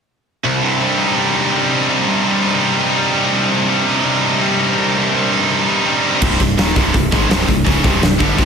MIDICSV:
0, 0, Header, 1, 5, 480
1, 0, Start_track
1, 0, Key_signature, -3, "minor"
1, 0, Tempo, 361011
1, 584, Time_signature, 4, 2, 24, 8
1, 11235, End_track
2, 0, Start_track
2, 0, Title_t, "Distorted electric guitar"
2, 0, Program_c, 0, 30
2, 595, Note_on_c, 0, 36, 68
2, 825, Note_on_c, 0, 48, 61
2, 1062, Note_on_c, 0, 55, 65
2, 1292, Note_on_c, 0, 43, 61
2, 1535, Note_off_c, 0, 48, 0
2, 1540, Note_on_c, 0, 48, 67
2, 1785, Note_on_c, 0, 63, 65
2, 2018, Note_off_c, 0, 55, 0
2, 2023, Note_on_c, 0, 55, 59
2, 2258, Note_off_c, 0, 63, 0
2, 2263, Note_on_c, 0, 63, 60
2, 2499, Note_off_c, 0, 43, 0
2, 2500, Note_off_c, 0, 36, 0
2, 2505, Note_on_c, 0, 36, 66
2, 2741, Note_off_c, 0, 48, 0
2, 2746, Note_on_c, 0, 48, 58
2, 2974, Note_off_c, 0, 55, 0
2, 2980, Note_on_c, 0, 55, 64
2, 3225, Note_on_c, 0, 43, 59
2, 3455, Note_off_c, 0, 48, 0
2, 3461, Note_on_c, 0, 48, 67
2, 3699, Note_off_c, 0, 63, 0
2, 3704, Note_on_c, 0, 63, 68
2, 3942, Note_off_c, 0, 55, 0
2, 3947, Note_on_c, 0, 55, 61
2, 4186, Note_off_c, 0, 63, 0
2, 4191, Note_on_c, 0, 63, 66
2, 4415, Note_off_c, 0, 36, 0
2, 4420, Note_on_c, 0, 36, 71
2, 4427, Note_off_c, 0, 43, 0
2, 4652, Note_off_c, 0, 48, 0
2, 4658, Note_on_c, 0, 48, 63
2, 4891, Note_off_c, 0, 55, 0
2, 4896, Note_on_c, 0, 55, 67
2, 5142, Note_on_c, 0, 43, 58
2, 5383, Note_off_c, 0, 48, 0
2, 5388, Note_on_c, 0, 48, 65
2, 5622, Note_off_c, 0, 63, 0
2, 5627, Note_on_c, 0, 63, 67
2, 5864, Note_off_c, 0, 55, 0
2, 5869, Note_on_c, 0, 55, 59
2, 6088, Note_off_c, 0, 63, 0
2, 6104, Note_on_c, 0, 63, 69
2, 6337, Note_off_c, 0, 36, 0
2, 6342, Note_on_c, 0, 36, 72
2, 6346, Note_off_c, 0, 43, 0
2, 6567, Note_off_c, 0, 48, 0
2, 6583, Note_on_c, 0, 48, 66
2, 6804, Note_off_c, 0, 55, 0
2, 6820, Note_on_c, 0, 55, 60
2, 7065, Note_on_c, 0, 43, 63
2, 7283, Note_off_c, 0, 48, 0
2, 7299, Note_on_c, 0, 48, 69
2, 7307, Note_off_c, 0, 63, 0
2, 7546, Note_off_c, 0, 36, 0
2, 7554, Note_on_c, 0, 63, 72
2, 7779, Note_off_c, 0, 55, 0
2, 7795, Note_on_c, 0, 55, 64
2, 8012, Note_off_c, 0, 63, 0
2, 8028, Note_on_c, 0, 63, 68
2, 8259, Note_off_c, 0, 43, 0
2, 8264, Note_off_c, 0, 48, 0
2, 8267, Note_on_c, 0, 36, 93
2, 8269, Note_off_c, 0, 63, 0
2, 8272, Note_off_c, 0, 55, 0
2, 8275, Note_on_c, 0, 43, 102
2, 8283, Note_on_c, 0, 48, 95
2, 8489, Note_off_c, 0, 36, 0
2, 8492, Note_off_c, 0, 43, 0
2, 8505, Note_on_c, 0, 36, 61
2, 8508, Note_on_c, 0, 43, 72
2, 8509, Note_off_c, 0, 48, 0
2, 8699, Note_off_c, 0, 36, 0
2, 8700, Note_off_c, 0, 43, 0
2, 8751, Note_on_c, 0, 39, 92
2, 8764, Note_on_c, 0, 46, 84
2, 8769, Note_on_c, 0, 51, 97
2, 8975, Note_off_c, 0, 39, 0
2, 8981, Note_on_c, 0, 36, 92
2, 8988, Note_off_c, 0, 46, 0
2, 8991, Note_off_c, 0, 51, 0
2, 8993, Note_on_c, 0, 43, 86
2, 8998, Note_on_c, 0, 48, 100
2, 9209, Note_off_c, 0, 36, 0
2, 9214, Note_off_c, 0, 43, 0
2, 9225, Note_on_c, 0, 36, 65
2, 9226, Note_off_c, 0, 48, 0
2, 9230, Note_on_c, 0, 43, 64
2, 9418, Note_off_c, 0, 36, 0
2, 9421, Note_off_c, 0, 43, 0
2, 9464, Note_on_c, 0, 44, 85
2, 9477, Note_on_c, 0, 51, 96
2, 9482, Note_on_c, 0, 56, 101
2, 9698, Note_off_c, 0, 44, 0
2, 9705, Note_off_c, 0, 51, 0
2, 9707, Note_off_c, 0, 56, 0
2, 9707, Note_on_c, 0, 36, 77
2, 9717, Note_on_c, 0, 43, 97
2, 9726, Note_on_c, 0, 48, 97
2, 9926, Note_off_c, 0, 36, 0
2, 9926, Note_off_c, 0, 43, 0
2, 9942, Note_on_c, 0, 36, 60
2, 9942, Note_on_c, 0, 43, 68
2, 9949, Note_off_c, 0, 48, 0
2, 10136, Note_off_c, 0, 36, 0
2, 10136, Note_off_c, 0, 43, 0
2, 10164, Note_on_c, 0, 37, 90
2, 10177, Note_on_c, 0, 44, 93
2, 10185, Note_on_c, 0, 49, 93
2, 10408, Note_off_c, 0, 37, 0
2, 10414, Note_off_c, 0, 44, 0
2, 10416, Note_on_c, 0, 36, 90
2, 10418, Note_off_c, 0, 49, 0
2, 10421, Note_on_c, 0, 43, 99
2, 10432, Note_on_c, 0, 48, 94
2, 10636, Note_off_c, 0, 36, 0
2, 10644, Note_off_c, 0, 43, 0
2, 10652, Note_on_c, 0, 36, 60
2, 10660, Note_on_c, 0, 43, 67
2, 10661, Note_off_c, 0, 48, 0
2, 10850, Note_off_c, 0, 36, 0
2, 10854, Note_off_c, 0, 43, 0
2, 10881, Note_on_c, 0, 43, 90
2, 10892, Note_on_c, 0, 50, 98
2, 10900, Note_on_c, 0, 55, 105
2, 11124, Note_off_c, 0, 43, 0
2, 11129, Note_on_c, 0, 36, 93
2, 11131, Note_off_c, 0, 50, 0
2, 11135, Note_off_c, 0, 55, 0
2, 11139, Note_on_c, 0, 43, 90
2, 11148, Note_on_c, 0, 48, 94
2, 11235, Note_off_c, 0, 36, 0
2, 11235, Note_off_c, 0, 43, 0
2, 11235, Note_off_c, 0, 48, 0
2, 11235, End_track
3, 0, Start_track
3, 0, Title_t, "Distorted electric guitar"
3, 0, Program_c, 1, 30
3, 821, Note_on_c, 1, 43, 63
3, 1067, Note_on_c, 1, 48, 66
3, 1307, Note_on_c, 1, 63, 68
3, 1537, Note_on_c, 1, 55, 69
3, 1761, Note_off_c, 1, 43, 0
3, 1777, Note_on_c, 1, 43, 63
3, 2006, Note_off_c, 1, 55, 0
3, 2252, Note_off_c, 1, 48, 0
3, 2258, Note_on_c, 1, 48, 61
3, 2729, Note_off_c, 1, 43, 0
3, 2745, Note_on_c, 1, 43, 60
3, 2981, Note_off_c, 1, 48, 0
3, 2986, Note_on_c, 1, 48, 67
3, 3223, Note_off_c, 1, 63, 0
3, 3228, Note_on_c, 1, 63, 73
3, 3458, Note_on_c, 1, 55, 71
3, 3687, Note_off_c, 1, 43, 0
3, 3703, Note_on_c, 1, 43, 62
3, 3940, Note_off_c, 1, 55, 0
3, 4179, Note_off_c, 1, 48, 0
3, 4185, Note_on_c, 1, 48, 62
3, 4644, Note_off_c, 1, 43, 0
3, 4660, Note_on_c, 1, 43, 64
3, 4903, Note_off_c, 1, 48, 0
3, 4908, Note_on_c, 1, 48, 71
3, 5136, Note_off_c, 1, 63, 0
3, 5141, Note_on_c, 1, 63, 77
3, 5374, Note_on_c, 1, 55, 67
3, 5617, Note_off_c, 1, 43, 0
3, 5633, Note_on_c, 1, 43, 64
3, 5857, Note_off_c, 1, 55, 0
3, 6103, Note_off_c, 1, 48, 0
3, 6108, Note_on_c, 1, 48, 63
3, 6584, Note_off_c, 1, 43, 0
3, 6600, Note_on_c, 1, 43, 62
3, 6832, Note_off_c, 1, 48, 0
3, 6848, Note_on_c, 1, 48, 64
3, 7077, Note_off_c, 1, 63, 0
3, 7082, Note_on_c, 1, 63, 72
3, 7326, Note_on_c, 1, 55, 66
3, 7537, Note_off_c, 1, 43, 0
3, 7553, Note_on_c, 1, 43, 65
3, 7774, Note_off_c, 1, 55, 0
3, 8015, Note_off_c, 1, 48, 0
3, 8031, Note_on_c, 1, 48, 59
3, 8258, Note_off_c, 1, 43, 0
3, 8267, Note_off_c, 1, 48, 0
3, 8275, Note_off_c, 1, 63, 0
3, 11235, End_track
4, 0, Start_track
4, 0, Title_t, "Picked electric bass"
4, 0, Program_c, 2, 34
4, 8265, Note_on_c, 2, 24, 90
4, 8490, Note_off_c, 2, 24, 0
4, 8510, Note_on_c, 2, 24, 77
4, 8727, Note_off_c, 2, 24, 0
4, 8735, Note_on_c, 2, 27, 90
4, 8965, Note_off_c, 2, 27, 0
4, 8987, Note_on_c, 2, 24, 91
4, 9210, Note_off_c, 2, 24, 0
4, 9230, Note_on_c, 2, 24, 73
4, 9452, Note_off_c, 2, 24, 0
4, 9470, Note_on_c, 2, 32, 94
4, 9688, Note_off_c, 2, 32, 0
4, 9696, Note_on_c, 2, 24, 83
4, 9924, Note_off_c, 2, 24, 0
4, 9946, Note_on_c, 2, 24, 70
4, 10169, Note_off_c, 2, 24, 0
4, 10190, Note_on_c, 2, 25, 99
4, 10411, Note_off_c, 2, 25, 0
4, 10427, Note_on_c, 2, 24, 94
4, 10649, Note_off_c, 2, 24, 0
4, 10661, Note_on_c, 2, 24, 78
4, 10886, Note_off_c, 2, 24, 0
4, 10901, Note_on_c, 2, 31, 92
4, 11125, Note_off_c, 2, 31, 0
4, 11147, Note_on_c, 2, 24, 87
4, 11235, Note_off_c, 2, 24, 0
4, 11235, End_track
5, 0, Start_track
5, 0, Title_t, "Drums"
5, 8266, Note_on_c, 9, 49, 105
5, 8272, Note_on_c, 9, 36, 98
5, 8399, Note_off_c, 9, 49, 0
5, 8405, Note_off_c, 9, 36, 0
5, 8511, Note_on_c, 9, 36, 95
5, 8515, Note_on_c, 9, 46, 60
5, 8644, Note_off_c, 9, 36, 0
5, 8648, Note_off_c, 9, 46, 0
5, 8756, Note_on_c, 9, 46, 80
5, 8762, Note_on_c, 9, 38, 114
5, 8889, Note_off_c, 9, 46, 0
5, 8895, Note_off_c, 9, 38, 0
5, 8991, Note_on_c, 9, 36, 107
5, 9000, Note_on_c, 9, 46, 63
5, 9124, Note_off_c, 9, 36, 0
5, 9133, Note_off_c, 9, 46, 0
5, 9232, Note_on_c, 9, 36, 88
5, 9232, Note_on_c, 9, 46, 78
5, 9365, Note_off_c, 9, 36, 0
5, 9365, Note_off_c, 9, 46, 0
5, 9472, Note_on_c, 9, 36, 100
5, 9487, Note_on_c, 9, 46, 60
5, 9605, Note_off_c, 9, 36, 0
5, 9620, Note_off_c, 9, 46, 0
5, 9716, Note_on_c, 9, 46, 80
5, 9723, Note_on_c, 9, 38, 104
5, 9849, Note_off_c, 9, 46, 0
5, 9856, Note_off_c, 9, 38, 0
5, 9952, Note_on_c, 9, 36, 89
5, 9963, Note_on_c, 9, 46, 63
5, 10085, Note_off_c, 9, 36, 0
5, 10096, Note_off_c, 9, 46, 0
5, 10192, Note_on_c, 9, 36, 97
5, 10204, Note_on_c, 9, 46, 75
5, 10325, Note_off_c, 9, 36, 0
5, 10337, Note_off_c, 9, 46, 0
5, 10429, Note_on_c, 9, 36, 106
5, 10435, Note_on_c, 9, 46, 59
5, 10562, Note_off_c, 9, 36, 0
5, 10568, Note_off_c, 9, 46, 0
5, 10673, Note_on_c, 9, 46, 73
5, 10679, Note_on_c, 9, 38, 106
5, 10806, Note_off_c, 9, 46, 0
5, 10812, Note_off_c, 9, 38, 0
5, 10908, Note_on_c, 9, 36, 104
5, 10912, Note_on_c, 9, 46, 60
5, 11041, Note_off_c, 9, 36, 0
5, 11045, Note_off_c, 9, 46, 0
5, 11148, Note_on_c, 9, 36, 102
5, 11156, Note_on_c, 9, 46, 68
5, 11235, Note_off_c, 9, 36, 0
5, 11235, Note_off_c, 9, 46, 0
5, 11235, End_track
0, 0, End_of_file